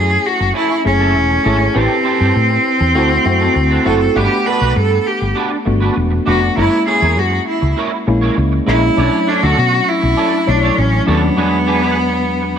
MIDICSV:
0, 0, Header, 1, 6, 480
1, 0, Start_track
1, 0, Tempo, 601202
1, 1399, Time_signature, 4, 2, 24, 8
1, 10049, End_track
2, 0, Start_track
2, 0, Title_t, "Clean electric guitar"
2, 0, Program_c, 0, 27
2, 433, Note_on_c, 0, 61, 69
2, 441, Note_on_c, 0, 64, 94
2, 446, Note_on_c, 0, 69, 82
2, 542, Note_off_c, 0, 69, 0
2, 551, Note_off_c, 0, 64, 0
2, 592, Note_off_c, 0, 61, 0
2, 793, Note_on_c, 0, 69, 56
2, 800, Note_on_c, 0, 64, 54
2, 806, Note_on_c, 0, 61, 41
2, 918, Note_off_c, 0, 69, 0
2, 921, Note_off_c, 0, 64, 0
2, 924, Note_off_c, 0, 61, 0
2, 1150, Note_on_c, 0, 61, 72
2, 1155, Note_on_c, 0, 64, 76
2, 1162, Note_on_c, 0, 69, 87
2, 1261, Note_off_c, 0, 69, 0
2, 1269, Note_off_c, 0, 64, 0
2, 1310, Note_off_c, 0, 61, 0
2, 1388, Note_on_c, 0, 60, 77
2, 1395, Note_on_c, 0, 67, 75
2, 1402, Note_on_c, 0, 69, 84
2, 1549, Note_off_c, 0, 60, 0
2, 1553, Note_off_c, 0, 67, 0
2, 1556, Note_off_c, 0, 69, 0
2, 1628, Note_on_c, 0, 60, 71
2, 1634, Note_on_c, 0, 67, 65
2, 1641, Note_on_c, 0, 69, 68
2, 1738, Note_off_c, 0, 69, 0
2, 1745, Note_off_c, 0, 67, 0
2, 1748, Note_on_c, 0, 69, 57
2, 1751, Note_off_c, 0, 60, 0
2, 1755, Note_on_c, 0, 67, 51
2, 1761, Note_on_c, 0, 60, 51
2, 1861, Note_off_c, 0, 60, 0
2, 1866, Note_off_c, 0, 67, 0
2, 1869, Note_off_c, 0, 69, 0
2, 2349, Note_on_c, 0, 60, 72
2, 2355, Note_on_c, 0, 66, 72
2, 2363, Note_on_c, 0, 69, 80
2, 2463, Note_off_c, 0, 69, 0
2, 2471, Note_off_c, 0, 66, 0
2, 2510, Note_off_c, 0, 60, 0
2, 2712, Note_on_c, 0, 69, 66
2, 2719, Note_on_c, 0, 66, 52
2, 2725, Note_on_c, 0, 60, 54
2, 2827, Note_off_c, 0, 60, 0
2, 2832, Note_off_c, 0, 66, 0
2, 2838, Note_off_c, 0, 69, 0
2, 2953, Note_on_c, 0, 69, 64
2, 2960, Note_on_c, 0, 66, 59
2, 2964, Note_on_c, 0, 60, 51
2, 3064, Note_off_c, 0, 60, 0
2, 3071, Note_off_c, 0, 66, 0
2, 3074, Note_on_c, 0, 60, 78
2, 3076, Note_off_c, 0, 69, 0
2, 3080, Note_on_c, 0, 66, 91
2, 3085, Note_on_c, 0, 69, 80
2, 3187, Note_off_c, 0, 69, 0
2, 3196, Note_off_c, 0, 66, 0
2, 3233, Note_off_c, 0, 60, 0
2, 3314, Note_on_c, 0, 62, 67
2, 3320, Note_on_c, 0, 66, 73
2, 3327, Note_on_c, 0, 71, 89
2, 3473, Note_off_c, 0, 62, 0
2, 3476, Note_off_c, 0, 66, 0
2, 3479, Note_off_c, 0, 71, 0
2, 3553, Note_on_c, 0, 62, 74
2, 3559, Note_on_c, 0, 66, 70
2, 3566, Note_on_c, 0, 71, 65
2, 3666, Note_off_c, 0, 71, 0
2, 3672, Note_off_c, 0, 66, 0
2, 3676, Note_on_c, 0, 71, 61
2, 3678, Note_off_c, 0, 62, 0
2, 3682, Note_on_c, 0, 66, 60
2, 3689, Note_on_c, 0, 62, 52
2, 3781, Note_off_c, 0, 62, 0
2, 3786, Note_off_c, 0, 66, 0
2, 3789, Note_off_c, 0, 71, 0
2, 4272, Note_on_c, 0, 62, 78
2, 4279, Note_on_c, 0, 66, 74
2, 4285, Note_on_c, 0, 71, 75
2, 4385, Note_off_c, 0, 71, 0
2, 4394, Note_off_c, 0, 66, 0
2, 4432, Note_off_c, 0, 62, 0
2, 4633, Note_on_c, 0, 71, 58
2, 4642, Note_on_c, 0, 66, 54
2, 4647, Note_on_c, 0, 62, 47
2, 4743, Note_off_c, 0, 62, 0
2, 4749, Note_off_c, 0, 66, 0
2, 4754, Note_off_c, 0, 71, 0
2, 4996, Note_on_c, 0, 62, 78
2, 5003, Note_on_c, 0, 66, 77
2, 5008, Note_on_c, 0, 71, 86
2, 5106, Note_off_c, 0, 71, 0
2, 5117, Note_off_c, 0, 66, 0
2, 5155, Note_off_c, 0, 62, 0
2, 5239, Note_on_c, 0, 64, 65
2, 5246, Note_on_c, 0, 70, 81
2, 5252, Note_on_c, 0, 73, 80
2, 5396, Note_off_c, 0, 64, 0
2, 5399, Note_off_c, 0, 70, 0
2, 5403, Note_off_c, 0, 73, 0
2, 5478, Note_on_c, 0, 64, 67
2, 5485, Note_on_c, 0, 70, 67
2, 5492, Note_on_c, 0, 73, 69
2, 5591, Note_off_c, 0, 73, 0
2, 5596, Note_off_c, 0, 70, 0
2, 5601, Note_on_c, 0, 73, 61
2, 5602, Note_off_c, 0, 64, 0
2, 5606, Note_on_c, 0, 70, 56
2, 5611, Note_on_c, 0, 64, 52
2, 5712, Note_off_c, 0, 64, 0
2, 5718, Note_off_c, 0, 70, 0
2, 5720, Note_off_c, 0, 73, 0
2, 6200, Note_on_c, 0, 64, 83
2, 6208, Note_on_c, 0, 70, 80
2, 6214, Note_on_c, 0, 73, 88
2, 6309, Note_off_c, 0, 73, 0
2, 6318, Note_off_c, 0, 70, 0
2, 6357, Note_off_c, 0, 64, 0
2, 6557, Note_on_c, 0, 73, 61
2, 6565, Note_on_c, 0, 70, 55
2, 6571, Note_on_c, 0, 64, 57
2, 6672, Note_off_c, 0, 64, 0
2, 6676, Note_off_c, 0, 70, 0
2, 6681, Note_off_c, 0, 73, 0
2, 6919, Note_on_c, 0, 64, 93
2, 6926, Note_on_c, 0, 70, 80
2, 6934, Note_on_c, 0, 73, 87
2, 7034, Note_off_c, 0, 73, 0
2, 7045, Note_off_c, 0, 70, 0
2, 7077, Note_off_c, 0, 64, 0
2, 7163, Note_on_c, 0, 62, 76
2, 7170, Note_on_c, 0, 69, 68
2, 7175, Note_on_c, 0, 73, 80
2, 7319, Note_off_c, 0, 62, 0
2, 7322, Note_off_c, 0, 69, 0
2, 7325, Note_off_c, 0, 73, 0
2, 7401, Note_on_c, 0, 62, 74
2, 7407, Note_on_c, 0, 69, 76
2, 7413, Note_on_c, 0, 73, 75
2, 7509, Note_off_c, 0, 73, 0
2, 7518, Note_off_c, 0, 69, 0
2, 7519, Note_on_c, 0, 73, 58
2, 7521, Note_off_c, 0, 62, 0
2, 7528, Note_on_c, 0, 69, 61
2, 7531, Note_on_c, 0, 62, 51
2, 7628, Note_off_c, 0, 62, 0
2, 7633, Note_off_c, 0, 69, 0
2, 7636, Note_off_c, 0, 73, 0
2, 8117, Note_on_c, 0, 62, 87
2, 8123, Note_on_c, 0, 69, 79
2, 8130, Note_on_c, 0, 73, 99
2, 8227, Note_off_c, 0, 73, 0
2, 8236, Note_off_c, 0, 69, 0
2, 8276, Note_off_c, 0, 62, 0
2, 8476, Note_on_c, 0, 73, 60
2, 8483, Note_on_c, 0, 69, 54
2, 8489, Note_on_c, 0, 62, 48
2, 8590, Note_off_c, 0, 62, 0
2, 8594, Note_off_c, 0, 69, 0
2, 8597, Note_off_c, 0, 73, 0
2, 8836, Note_on_c, 0, 62, 74
2, 8841, Note_on_c, 0, 69, 82
2, 8847, Note_on_c, 0, 73, 78
2, 8949, Note_off_c, 0, 73, 0
2, 8959, Note_off_c, 0, 69, 0
2, 8995, Note_off_c, 0, 62, 0
2, 9075, Note_on_c, 0, 62, 74
2, 9082, Note_on_c, 0, 68, 90
2, 9087, Note_on_c, 0, 71, 90
2, 9235, Note_off_c, 0, 62, 0
2, 9238, Note_off_c, 0, 68, 0
2, 9240, Note_off_c, 0, 71, 0
2, 9312, Note_on_c, 0, 62, 69
2, 9318, Note_on_c, 0, 68, 69
2, 9324, Note_on_c, 0, 71, 83
2, 9426, Note_off_c, 0, 71, 0
2, 9432, Note_off_c, 0, 68, 0
2, 9435, Note_on_c, 0, 71, 67
2, 9437, Note_off_c, 0, 62, 0
2, 9442, Note_on_c, 0, 68, 55
2, 9447, Note_on_c, 0, 62, 49
2, 9548, Note_off_c, 0, 62, 0
2, 9553, Note_off_c, 0, 68, 0
2, 9557, Note_off_c, 0, 71, 0
2, 10049, End_track
3, 0, Start_track
3, 0, Title_t, "Cello"
3, 0, Program_c, 1, 42
3, 0, Note_on_c, 1, 68, 90
3, 207, Note_on_c, 1, 66, 96
3, 219, Note_off_c, 1, 68, 0
3, 443, Note_off_c, 1, 66, 0
3, 452, Note_on_c, 1, 64, 98
3, 669, Note_off_c, 1, 64, 0
3, 692, Note_on_c, 1, 61, 100
3, 1406, Note_on_c, 1, 60, 109
3, 1418, Note_off_c, 1, 61, 0
3, 3084, Note_on_c, 1, 69, 91
3, 3096, Note_off_c, 1, 60, 0
3, 3325, Note_on_c, 1, 67, 103
3, 3337, Note_off_c, 1, 69, 0
3, 3563, Note_on_c, 1, 71, 95
3, 3575, Note_off_c, 1, 67, 0
3, 3804, Note_on_c, 1, 69, 92
3, 3816, Note_off_c, 1, 71, 0
3, 4046, Note_on_c, 1, 67, 84
3, 4058, Note_off_c, 1, 69, 0
3, 4283, Note_off_c, 1, 67, 0
3, 5010, Note_on_c, 1, 66, 85
3, 5229, Note_off_c, 1, 66, 0
3, 5257, Note_on_c, 1, 64, 101
3, 5473, Note_off_c, 1, 64, 0
3, 5500, Note_on_c, 1, 68, 94
3, 5738, Note_on_c, 1, 66, 88
3, 5750, Note_off_c, 1, 68, 0
3, 5970, Note_off_c, 1, 66, 0
3, 5975, Note_on_c, 1, 64, 79
3, 6192, Note_off_c, 1, 64, 0
3, 6936, Note_on_c, 1, 64, 99
3, 7416, Note_on_c, 1, 62, 98
3, 7428, Note_off_c, 1, 64, 0
3, 7530, Note_on_c, 1, 66, 104
3, 7542, Note_off_c, 1, 62, 0
3, 7893, Note_on_c, 1, 64, 100
3, 7905, Note_off_c, 1, 66, 0
3, 8375, Note_on_c, 1, 62, 86
3, 8386, Note_off_c, 1, 64, 0
3, 8611, Note_on_c, 1, 61, 93
3, 8623, Note_off_c, 1, 62, 0
3, 8847, Note_off_c, 1, 61, 0
3, 8857, Note_on_c, 1, 59, 98
3, 10049, Note_off_c, 1, 59, 0
3, 10049, End_track
4, 0, Start_track
4, 0, Title_t, "Tine electric piano"
4, 0, Program_c, 2, 4
4, 0, Control_c, 2, 64, 127
4, 0, Note_on_c, 2, 57, 65
4, 0, Note_on_c, 2, 61, 65
4, 0, Note_on_c, 2, 64, 63
4, 0, Note_on_c, 2, 80, 73
4, 274, Note_off_c, 2, 57, 0
4, 276, Note_off_c, 2, 61, 0
4, 278, Note_off_c, 2, 64, 0
4, 279, Note_off_c, 2, 80, 0
4, 676, Note_on_c, 2, 57, 64
4, 676, Note_on_c, 2, 61, 56
4, 681, Note_on_c, 2, 64, 55
4, 685, Note_on_c, 2, 68, 68
4, 1076, Note_off_c, 2, 57, 0
4, 1076, Note_off_c, 2, 61, 0
4, 1078, Note_off_c, 2, 64, 0
4, 1080, Note_off_c, 2, 68, 0
4, 1159, Note_on_c, 2, 57, 70
4, 1161, Note_on_c, 2, 61, 67
4, 1164, Note_on_c, 2, 64, 68
4, 1168, Note_on_c, 2, 68, 74
4, 1358, Note_off_c, 2, 57, 0
4, 1359, Note_off_c, 2, 61, 0
4, 1361, Note_off_c, 2, 64, 0
4, 1362, Note_off_c, 2, 68, 0
4, 1399, Note_on_c, 2, 71, 75
4, 1402, Note_on_c, 2, 60, 61
4, 1407, Note_on_c, 2, 64, 65
4, 1407, Note_on_c, 2, 67, 76
4, 1408, Control_c, 2, 64, 0
4, 1545, Control_c, 2, 64, 127
4, 2196, Note_off_c, 2, 71, 0
4, 2198, Note_off_c, 2, 60, 0
4, 2200, Note_off_c, 2, 64, 0
4, 2200, Note_off_c, 2, 67, 0
4, 2354, Note_on_c, 2, 57, 90
4, 2357, Note_on_c, 2, 60, 76
4, 2361, Note_on_c, 2, 64, 79
4, 2365, Note_on_c, 2, 66, 102
4, 2370, Control_c, 2, 64, 0
4, 2511, Control_c, 2, 64, 127
4, 2556, Note_off_c, 2, 57, 0
4, 2557, Note_off_c, 2, 60, 0
4, 2559, Note_off_c, 2, 64, 0
4, 2561, Note_off_c, 2, 66, 0
4, 2596, Note_on_c, 2, 57, 73
4, 2600, Note_on_c, 2, 60, 71
4, 2602, Note_on_c, 2, 64, 65
4, 2607, Note_on_c, 2, 66, 80
4, 2996, Note_off_c, 2, 57, 0
4, 2998, Note_off_c, 2, 60, 0
4, 2999, Note_off_c, 2, 64, 0
4, 3002, Note_off_c, 2, 66, 0
4, 3076, Note_on_c, 2, 57, 65
4, 3078, Note_on_c, 2, 60, 67
4, 3081, Note_on_c, 2, 64, 66
4, 3084, Note_on_c, 2, 66, 75
4, 3277, Note_off_c, 2, 57, 0
4, 3278, Note_off_c, 2, 60, 0
4, 3279, Note_off_c, 2, 64, 0
4, 3281, Note_off_c, 2, 66, 0
4, 3315, Note_on_c, 2, 57, 67
4, 3318, Note_on_c, 2, 59, 62
4, 3322, Note_on_c, 2, 62, 64
4, 3324, Note_on_c, 2, 78, 78
4, 3331, Control_c, 2, 64, 0
4, 3465, Control_c, 2, 64, 127
4, 4115, Note_off_c, 2, 57, 0
4, 4116, Note_off_c, 2, 59, 0
4, 4118, Note_off_c, 2, 62, 0
4, 4119, Note_off_c, 2, 78, 0
4, 4514, Note_on_c, 2, 57, 79
4, 4518, Note_on_c, 2, 59, 67
4, 4522, Note_on_c, 2, 62, 73
4, 4525, Note_on_c, 2, 66, 78
4, 4916, Note_off_c, 2, 57, 0
4, 4918, Note_off_c, 2, 59, 0
4, 4920, Note_off_c, 2, 62, 0
4, 4922, Note_off_c, 2, 66, 0
4, 5001, Note_on_c, 2, 57, 69
4, 5006, Note_on_c, 2, 59, 59
4, 5008, Note_on_c, 2, 62, 57
4, 5011, Note_on_c, 2, 66, 76
4, 5200, Note_off_c, 2, 57, 0
4, 5203, Note_off_c, 2, 59, 0
4, 5204, Note_off_c, 2, 62, 0
4, 5205, Note_off_c, 2, 66, 0
4, 5240, Note_on_c, 2, 56, 65
4, 5244, Note_on_c, 2, 58, 61
4, 5248, Note_on_c, 2, 61, 60
4, 5251, Note_on_c, 2, 64, 74
4, 5252, Control_c, 2, 64, 0
4, 5372, Control_c, 2, 64, 127
4, 6038, Note_off_c, 2, 56, 0
4, 6040, Note_off_c, 2, 58, 0
4, 6042, Note_off_c, 2, 61, 0
4, 6043, Note_off_c, 2, 64, 0
4, 6444, Note_on_c, 2, 56, 72
4, 6447, Note_on_c, 2, 58, 68
4, 6450, Note_on_c, 2, 61, 73
4, 6455, Note_on_c, 2, 64, 83
4, 6842, Note_off_c, 2, 56, 0
4, 6843, Note_off_c, 2, 58, 0
4, 6844, Note_off_c, 2, 61, 0
4, 6847, Note_off_c, 2, 64, 0
4, 6918, Note_on_c, 2, 56, 69
4, 6921, Note_on_c, 2, 58, 69
4, 6926, Note_on_c, 2, 61, 66
4, 6928, Note_on_c, 2, 64, 78
4, 7119, Note_off_c, 2, 56, 0
4, 7121, Note_off_c, 2, 58, 0
4, 7123, Note_off_c, 2, 61, 0
4, 7125, Note_off_c, 2, 64, 0
4, 7156, Note_on_c, 2, 54, 68
4, 7159, Note_on_c, 2, 57, 67
4, 7163, Note_on_c, 2, 61, 61
4, 7165, Note_on_c, 2, 62, 78
4, 7174, Control_c, 2, 64, 0
4, 7334, Control_c, 2, 64, 127
4, 7957, Note_off_c, 2, 54, 0
4, 7958, Note_off_c, 2, 57, 0
4, 7960, Note_off_c, 2, 61, 0
4, 7961, Note_off_c, 2, 62, 0
4, 8358, Note_on_c, 2, 54, 66
4, 8362, Note_on_c, 2, 57, 57
4, 8362, Note_on_c, 2, 73, 62
4, 8368, Note_on_c, 2, 62, 55
4, 8417, Note_off_c, 2, 62, 0
4, 8418, Note_on_c, 2, 64, 74
4, 8759, Note_off_c, 2, 54, 0
4, 8761, Note_off_c, 2, 57, 0
4, 8761, Note_off_c, 2, 73, 0
4, 8789, Note_off_c, 2, 64, 0
4, 8836, Note_on_c, 2, 54, 73
4, 8838, Note_on_c, 2, 57, 59
4, 8841, Note_on_c, 2, 61, 65
4, 8846, Note_on_c, 2, 62, 83
4, 9039, Note_off_c, 2, 54, 0
4, 9040, Note_off_c, 2, 57, 0
4, 9041, Note_off_c, 2, 61, 0
4, 9043, Note_off_c, 2, 62, 0
4, 9075, Note_on_c, 2, 40, 68
4, 9076, Note_on_c, 2, 54, 61
4, 9079, Note_on_c, 2, 55, 51
4, 9080, Note_on_c, 2, 59, 69
4, 9084, Note_on_c, 2, 62, 71
4, 9093, Control_c, 2, 64, 0
4, 9131, Note_on_c, 2, 56, 63
4, 9133, Note_off_c, 2, 55, 0
4, 9239, Control_c, 2, 64, 127
4, 9875, Note_off_c, 2, 40, 0
4, 9876, Note_off_c, 2, 54, 0
4, 9878, Note_off_c, 2, 59, 0
4, 9880, Note_off_c, 2, 62, 0
4, 9903, Note_off_c, 2, 56, 0
4, 10049, End_track
5, 0, Start_track
5, 0, Title_t, "Fretless electric bass"
5, 0, Program_c, 3, 35
5, 0, Note_on_c, 3, 42, 95
5, 129, Note_off_c, 3, 42, 0
5, 320, Note_on_c, 3, 30, 79
5, 404, Note_off_c, 3, 30, 0
5, 680, Note_on_c, 3, 30, 80
5, 920, Note_off_c, 3, 30, 0
5, 920, Note_on_c, 3, 28, 90
5, 1089, Note_off_c, 3, 28, 0
5, 1160, Note_on_c, 3, 32, 91
5, 1329, Note_off_c, 3, 32, 0
5, 1398, Note_on_c, 3, 33, 94
5, 1483, Note_off_c, 3, 33, 0
5, 1758, Note_on_c, 3, 43, 68
5, 1843, Note_off_c, 3, 43, 0
5, 1880, Note_on_c, 3, 45, 98
5, 2049, Note_off_c, 3, 45, 0
5, 2237, Note_on_c, 3, 40, 78
5, 2354, Note_off_c, 3, 40, 0
5, 2354, Note_on_c, 3, 38, 104
5, 2526, Note_off_c, 3, 38, 0
5, 2596, Note_on_c, 3, 42, 81
5, 2767, Note_off_c, 3, 42, 0
5, 2836, Note_on_c, 3, 38, 93
5, 3007, Note_off_c, 3, 38, 0
5, 3077, Note_on_c, 3, 30, 89
5, 3248, Note_off_c, 3, 30, 0
5, 3318, Note_on_c, 3, 31, 103
5, 3404, Note_off_c, 3, 31, 0
5, 3680, Note_on_c, 3, 35, 71
5, 3765, Note_off_c, 3, 35, 0
5, 3800, Note_on_c, 3, 43, 92
5, 3969, Note_off_c, 3, 43, 0
5, 4161, Note_on_c, 3, 31, 79
5, 4245, Note_off_c, 3, 31, 0
5, 4521, Note_on_c, 3, 31, 94
5, 4691, Note_off_c, 3, 31, 0
5, 4763, Note_on_c, 3, 28, 85
5, 4932, Note_off_c, 3, 28, 0
5, 5003, Note_on_c, 3, 29, 80
5, 5172, Note_off_c, 3, 29, 0
5, 5244, Note_on_c, 3, 30, 98
5, 5328, Note_off_c, 3, 30, 0
5, 5603, Note_on_c, 3, 40, 82
5, 5721, Note_off_c, 3, 40, 0
5, 5721, Note_on_c, 3, 42, 96
5, 5891, Note_off_c, 3, 42, 0
5, 6083, Note_on_c, 3, 37, 78
5, 6167, Note_off_c, 3, 37, 0
5, 6443, Note_on_c, 3, 34, 75
5, 6613, Note_off_c, 3, 34, 0
5, 6684, Note_on_c, 3, 37, 81
5, 6853, Note_off_c, 3, 37, 0
5, 6922, Note_on_c, 3, 34, 94
5, 7092, Note_off_c, 3, 34, 0
5, 7163, Note_on_c, 3, 35, 107
5, 7248, Note_off_c, 3, 35, 0
5, 7527, Note_on_c, 3, 38, 69
5, 7610, Note_off_c, 3, 38, 0
5, 7644, Note_on_c, 3, 47, 93
5, 7813, Note_off_c, 3, 47, 0
5, 8006, Note_on_c, 3, 35, 85
5, 8090, Note_off_c, 3, 35, 0
5, 8364, Note_on_c, 3, 35, 79
5, 8533, Note_off_c, 3, 35, 0
5, 8605, Note_on_c, 3, 33, 95
5, 8774, Note_off_c, 3, 33, 0
5, 8841, Note_on_c, 3, 39, 88
5, 9012, Note_off_c, 3, 39, 0
5, 10049, End_track
6, 0, Start_track
6, 0, Title_t, "Muted clean electric guitar strokes"
6, 74, Note_on_c, 9, 29, 45
6, 153, Note_off_c, 9, 29, 0
6, 316, Note_on_c, 9, 29, 54
6, 396, Note_off_c, 9, 29, 0
6, 551, Note_on_c, 9, 29, 45
6, 631, Note_off_c, 9, 29, 0
6, 676, Note_on_c, 9, 29, 39
6, 756, Note_off_c, 9, 29, 0
6, 1034, Note_on_c, 9, 29, 49
6, 1113, Note_off_c, 9, 29, 0
6, 1271, Note_on_c, 9, 29, 48
6, 1351, Note_off_c, 9, 29, 0
6, 1871, Note_on_c, 9, 29, 38
6, 1950, Note_off_c, 9, 29, 0
6, 1990, Note_on_c, 9, 29, 36
6, 2070, Note_off_c, 9, 29, 0
6, 2231, Note_on_c, 9, 29, 48
6, 2311, Note_off_c, 9, 29, 0
6, 2472, Note_on_c, 9, 29, 44
6, 2552, Note_off_c, 9, 29, 0
6, 2591, Note_on_c, 9, 29, 31
6, 2670, Note_off_c, 9, 29, 0
6, 2836, Note_on_c, 9, 29, 42
6, 2916, Note_off_c, 9, 29, 0
6, 3197, Note_on_c, 9, 29, 46
6, 3277, Note_off_c, 9, 29, 0
6, 3790, Note_on_c, 9, 29, 40
6, 3870, Note_off_c, 9, 29, 0
6, 3914, Note_on_c, 9, 29, 43
6, 3994, Note_off_c, 9, 29, 0
6, 4157, Note_on_c, 9, 29, 43
6, 4237, Note_off_c, 9, 29, 0
6, 4394, Note_on_c, 9, 29, 43
6, 4474, Note_off_c, 9, 29, 0
6, 4513, Note_on_c, 9, 29, 39
6, 4593, Note_off_c, 9, 29, 0
6, 4753, Note_on_c, 9, 29, 42
6, 4833, Note_off_c, 9, 29, 0
6, 4875, Note_on_c, 9, 29, 52
6, 4955, Note_off_c, 9, 29, 0
6, 5116, Note_on_c, 9, 29, 46
6, 5196, Note_off_c, 9, 29, 0
6, 5721, Note_on_c, 9, 29, 35
6, 5801, Note_off_c, 9, 29, 0
6, 5839, Note_on_c, 9, 29, 49
6, 5918, Note_off_c, 9, 29, 0
6, 6078, Note_on_c, 9, 29, 46
6, 6157, Note_off_c, 9, 29, 0
6, 6319, Note_on_c, 9, 29, 45
6, 6398, Note_off_c, 9, 29, 0
6, 6441, Note_on_c, 9, 29, 51
6, 6521, Note_off_c, 9, 29, 0
6, 6682, Note_on_c, 9, 29, 46
6, 6762, Note_off_c, 9, 29, 0
6, 6801, Note_on_c, 9, 29, 53
6, 6881, Note_off_c, 9, 29, 0
6, 7044, Note_on_c, 9, 29, 41
6, 7124, Note_off_c, 9, 29, 0
6, 7638, Note_on_c, 9, 29, 50
6, 7717, Note_off_c, 9, 29, 0
6, 7760, Note_on_c, 9, 29, 38
6, 7840, Note_off_c, 9, 29, 0
6, 7996, Note_on_c, 9, 29, 55
6, 8076, Note_off_c, 9, 29, 0
6, 8236, Note_on_c, 9, 29, 47
6, 8316, Note_off_c, 9, 29, 0
6, 8356, Note_on_c, 9, 29, 43
6, 8436, Note_off_c, 9, 29, 0
6, 8600, Note_on_c, 9, 29, 34
6, 8680, Note_off_c, 9, 29, 0
6, 8719, Note_on_c, 9, 29, 43
6, 8799, Note_off_c, 9, 29, 0
6, 8959, Note_on_c, 9, 29, 49
6, 9038, Note_off_c, 9, 29, 0
6, 9558, Note_on_c, 9, 29, 43
6, 9638, Note_off_c, 9, 29, 0
6, 9680, Note_on_c, 9, 29, 36
6, 9760, Note_off_c, 9, 29, 0
6, 9915, Note_on_c, 9, 29, 46
6, 9995, Note_off_c, 9, 29, 0
6, 10049, End_track
0, 0, End_of_file